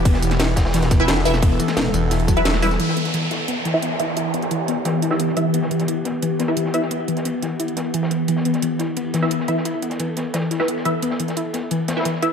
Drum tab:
RD |x---x---x---x-x-x-x-x---x---x---|x-x-x---x---x---x---x---x---x---|x---x---x---x---x---x---x---x---|x-x-x---x---x---x---x-x---x-x---|
HH |x---x-x-x---x---x-x-x---x---o---|x---x-x-x---x---x-x-x-x-x---o---|x---x-x-x---x---x---x---x---x---|x---x-x-x---x---x---x---x---x---|
TB |----x-------x---x---x-------x-x-|----x-------x---x---x-------x-x-|--------------------------------|--------------------------------|
SD |--o---o-o---o-o-o-o-o-o-o-o-o-o-|------o-o-------o-------o-o---o-|--o---o-----o-------o-o---o---o-|------o-----o---o---o-o---o-----|
BD |o-----------o-------o-----------|o-------------------o-----------|--------------------------------|--------------------------------|

RD |x---x---x---x---x---x---x---x---|x-x-x---x---x---x---x---x---x---|x---x---x---x---x---x---x---x---|x-x-x---x---x---x---x-x---x-x---|
HH |x---x-x-x---x---x---x---x---x---|x---x-x-x---x---x-x-x---x---x---|x---x-x-x---x---x---x---x---x---|x---x-x-x---x---x---x---x---x---|
TB |--------------------------------|--------------------------------|--------------------------------|--------------------------------|
SD |--o---o-----o-------o-o---o---o-|------o-----o-------o-----o-----|--o---o-----o-------o-o---o---o-|------o-----o---o---o-o---o-----|
BD |--------------------------------|--------------------------------|--------------------------------|--------------------------------|

RD |x---x---x---x---x---x-xxx---x---|
HH |x---x-x-x---x---x---x---x---x---|
TB |--------------------------------|
SD |--o---o-----o-------o-oo--o-----|
BD |--------------------------------|